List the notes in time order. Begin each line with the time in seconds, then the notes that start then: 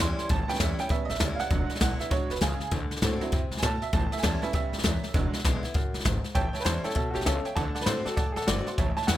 Already playing: E2
0.00 E2 E3 G3 C#4 E4 C6
0.19 snare
0.29 A1 A2 A5, kick, snare
0.48 G3 B3 C#4 G5, snare
0.55 snare
0.59 E2 E3 G3 C#4 E4 E5, kick, snare, hi-hat pedal
0.79 C#4 E4 G5, snare
0.89 E2 G3 B3 C#4 E5, kick, snare
1.05 D#5
1.09 A1 E5, snare
1.15 snare
1.19 D2 E3 G3 C#4 E4, kick, snare, hi-hat pedal
1.35 F5, muted upright bass stroke, snare
1.40 F#5
1.50 E1 E2 F#3 G#3 D4, kick, snare
1.69 muted upright bass stroke, snare
1.75 snare
1.80 B1 D3 G#3 B3 E4 F#5, kick, snare, hi-hat pedal
1.99 B3 E4 E5, muted upright bass stroke, snare
2.10 G#1 B2 F#3 G#3 D4 C#5, kick, snare
2.30 E1 B4, snare
2.36 snare
2.41 C#2 C#3 G#4, kick, snare, hi-hat pedal
2.60 muted upright bass stroke, snare
2.71 D2 D3, kick, snare
2.90 muted upright bass stroke, snare
2.97 snare
3.02 A2 D3 A3 C4 F#4, kick, snare, hi-hat pedal
3.20 F#3 C4 E4, muted upright bass stroke, snare
3.32 F#2 C3, kick, snare
3.51 D2, snare
3.57 G#5, snare
3.62 A2 B2 A5, kick, snare, hi-hat pedal
3.82 E5, muted upright bass stroke, snare
3.93 A1 A2 A5, kick, snare
4.12 E5, muted upright bass stroke, snare
4.18 G#5, snare
4.23 E2 E3 G3 C#4 E4 A5, kick, snare, hi-hat pedal
4.42 G3 B3 C#4 E4 E5, muted upright bass stroke, snare
4.53 C#2 G2 E5, kick, snare
4.72 A1, snare
4.78 snare
4.83 E2 F#2, kick, snare, hi-hat pedal
5.03 snare
5.14 E1 E2 F#3 G#3 D4, kick, snare
5.33 muted upright bass stroke, snare
5.39 snare
5.44 B1 D3 G#3 B3 E4, kick, snare, hi-hat pedal
5.63 B3 E4, muted upright bass stroke, snare
5.74 G#1 F#2, kick, snare
5.93 E1, snare
6.00 snare
6.05 G#1 G#2, kick, snare, hi-hat pedal
6.24 snare
6.35 A1 A2 C#5 E5 G5 A5, kick, snare
6.53 C#5 E5 A5, muted upright bass stroke, snare
6.60 B4, snare
6.64 E2 E3 G3 C#4 E4 C5 C#5 E5 A5, snare, hi-hat pedal
6.83 C#4 E4 A4 C#5 E5 G5, muted upright bass stroke, snare
6.90 snare
6.95 C#2 B2 C#5 E5 A5, kick, snare
7.11 F#4 C#5 E5
7.15 A1 G4 A5, snare
7.21 snare
7.25 C#2 C#3 C#4 A4 C#5 E5 A5, snare, hi-hat pedal
7.45 C#5 E5 G5, muted upright bass stroke, snare
7.56 D2 D3 D5 F#5 A5, kick, snare
7.75 D5 F#5 A5, snare
7.81 B4, snare
7.86 A2 D3 A3 C4 F#4 C5 D5 F#5 A5, snare, hi-hat pedal
8.05 C4 F#4 A4 D5 F#5 A5, muted upright bass stroke, snare
8.16 F#2 A2 D5 F#5 A5, kick, snare
8.32 G#4 D5
8.36 D2 A4 F#5 A5, snare
8.42 snare
8.47 G1 D3 A3 C4 F#4 D5 F#5 C6, snare, hi-hat pedal
8.67 C4 F#4 D5 F#5 C6, muted upright bass stroke, snare
8.78 A1 A2 C#5 E5 A5, kick, snare
8.97 C#5 E5 A5, muted upright bass stroke, snare
9.02 snare
9.07 E2 E3 G3 C#4 E4 C#5 E5 F#5 G5, snare, hi-hat pedal